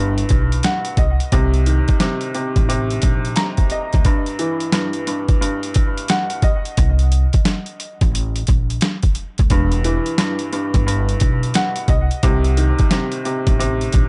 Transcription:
Already playing: G1 G2 E3
0.18 closed hi-hat
0.29 B1, kick, closed hi-hat
0.52 closed hi-hat
0.63 F#5, snare, closed hi-hat
0.85 closed hi-hat
0.97 C2 D#5, kick, closed hi-hat
1.20 closed hi-hat
1.32 C2 C3, kick, closed hi-hat
1.54 closed hi-hat
1.66 D#3, closed hi-hat
1.88 kick, closed hi-hat
2.00 C3, snare, closed hi-hat
2.21 closed hi-hat
2.35 C3, closed hi-hat
2.56 A1, kick, closed hi-hat
2.69 C3, closed hi-hat
2.90 closed hi-hat
3.02 A#1, kick, closed hi-hat
3.25 closed hi-hat
3.36 A#5, snare, closed hi-hat
3.57 kick, closed hi-hat
3.70 D#5, closed hi-hat
3.93 D2, kick, closed hi-hat
4.05 G2, kick, closed hi-hat
4.26 closed hi-hat
4.39 E3, closed hi-hat
4.60 closed hi-hat
4.72 G2, snare, closed hi-hat
4.93 closed hi-hat
5.07 G2, closed hi-hat
5.28 kick, closed hi-hat
5.41 G2, closed hi-hat
5.63 closed hi-hat
5.74 kick, closed hi-hat
5.97 closed hi-hat
6.08 F#5, snare, closed hi-hat
6.30 closed hi-hat
6.42 D#5, kick, closed hi-hat
6.65 closed hi-hat
6.77 C2, kick, closed hi-hat
6.99 closed hi-hat
7.12 closed hi-hat
7.33 kick, closed hi-hat
7.45 snare, closed hi-hat
7.66 closed hi-hat
7.80 closed hi-hat
8.01 A1, kick, closed hi-hat
8.15 closed hi-hat
8.36 closed hi-hat
8.47 A#1, kick, closed hi-hat
8.70 closed hi-hat
8.81 snare, closed hi-hat
9.03 kick, closed hi-hat
9.15 closed hi-hat
9.38 D2, kick, closed hi-hat
9.50 E1 G2, kick, closed hi-hat
9.72 closed hi-hat
9.84 E3, closed hi-hat
10.06 closed hi-hat
10.18 G2, snare, closed hi-hat
10.39 closed hi-hat
10.53 G2, closed hi-hat
10.74 G1, kick, closed hi-hat
10.86 G2, closed hi-hat
11.09 closed hi-hat
11.20 B1, kick, closed hi-hat
11.43 closed hi-hat
11.54 F#5, snare, closed hi-hat
11.76 closed hi-hat
11.88 C2 D#5, kick, closed hi-hat
12.11 closed hi-hat
12.23 C2 C3, kick, closed hi-hat
12.44 closed hi-hat
12.57 D#3, closed hi-hat
12.79 kick, closed hi-hat
12.91 C3, snare, closed hi-hat
13.12 closed hi-hat
13.25 C3, closed hi-hat
13.47 A1, kick, closed hi-hat
13.59 C3, closed hi-hat
13.81 closed hi-hat
13.92 A#1, kick, closed hi-hat

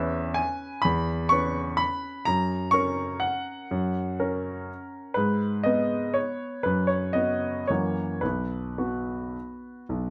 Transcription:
Already playing: E2 C#4 B4 E5
0.34 G#5
0.82 E2 B5
1.29 C#4 B4 C#6
1.77 B5
2.25 F#2 A#5
2.71 C#4 A#4 C#6
3.20 F#5
3.71 F#2
4.20 C#4 A#4
5.14 G#2 B4
5.63 B3 B4 D#5
6.14 C#5
6.63 F#2 B4
6.87 C#5
7.13 B3 F#4 D#5
7.67 F#2 E3 A#3 F#4 C#5
8.21 B1 B4
8.78 B3 F#4
9.89 B1

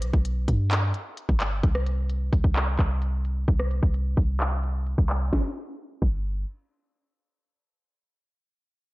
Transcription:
0.02 B1, closed hi-hat
0.13 B1, kick
0.25 closed hi-hat
0.48 G2, kick, closed hi-hat
0.71 clap, closed hi-hat
0.94 closed hi-hat
1.17 closed hi-hat
1.29 G1, kick
1.40 clap, closed hi-hat
1.63 C2, kick, closed hi-hat
1.75 cross-stick
1.87 closed hi-hat
2.10 closed hi-hat
2.33 C2, kick, closed hi-hat
2.44 C2, kick
2.56 clap, closed hi-hat
2.79 C2, kick, clap, closed hi-hat
3.02 closed hi-hat
3.25 closed hi-hat
3.48 C2, kick, closed hi-hat
3.60 cross-stick
3.71 closed hi-hat
3.83 C2, kick
3.94 closed hi-hat
4.17 C2, kick, open hi-hat
4.40 clap, closed hi-hat
4.63 closed hi-hat
4.87 closed hi-hat
4.98 C2, kick
5.10 clap, open hi-hat
5.33 G1, kick, snare
6.02 G1, kick, crash

